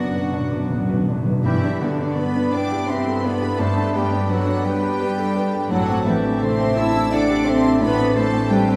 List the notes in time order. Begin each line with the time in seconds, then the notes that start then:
Already playing: F#1 F#2 F#3 B3 D4 F#4 B4 D5 F#5
0.02 B2
0.09 B2
0.15 B2 D4 B4
0.26 B2
0.33 B2 D4 D5
0.41 B2
0.49 B2 B4 D6
0.55 B2
0.63 B2
0.70 B2 B3
0.78 B2
0.86 B2 D4 B4
0.94 B2
1.01 B2
1.09 B2 D4
1.17 B2
1.25 B2 F#3 B4
1.32 B2
1.43 G2 E3 B3 D4 E4 G4 E5 B5
1.63 D4
1.79 D3 B3 D4 F#4 D5
2.00 D4
2.16 B3 D4 B4 D5 B5
2.36 D4
2.53 D4 E4 B4 D5 G5 D6
2.72 G4
2.88 C3 C4 B4 C5 E5 C6
3.07 A4
3.24 B3 D4 B4 D5 B5
3.42 G4
3.59 G2 A3 D4 A4 C5 A5
3.77 D4
3.94 G3 B3 G4 B4 G5
4.13 D4
4.29 F#3 D4 F#4 A4 B4 F#5
4.46 D4
4.64 G3 D4 G4 B4 G5
4.82 G4
5.00 G4 B4
5.18 A4
5.36 D4 B4
5.53 G4
5.69 A1 A2 F#3 A3 C4 F#4 A4 F#5 A5
5.88 C4
6.05 E3 A3 E4 G4 E5
6.25 C4
6.41 C3 C4 A4 C5 E5 C6
6.60 C4
6.76 E4 A4 E5 A5 E6
6.96 E4
7.11 D4 E4 A4 D5 F#5 D6
7.30 G4
7.46 C4 A4 C5 E5 C6
7.65 E4
7.81 A2 E3 B3 B4 D5 B5
7.98 C4
8.15 A3 A4 C5 A5
8.34 C4
8.50 G3 C4 G4 A4 B4 G5
8.68 C4